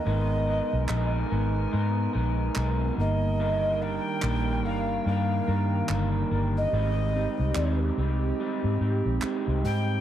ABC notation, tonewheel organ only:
X:1
M:4/4
L:1/8
Q:"Swing 16ths" 1/4=72
K:Ablyd
V:1 name="Tonewheel organ"
[A,B,_CEB]6- [A,B,CEB] [G,B,EB]- | [G,B,EB]8 | [A,CEG]8 |]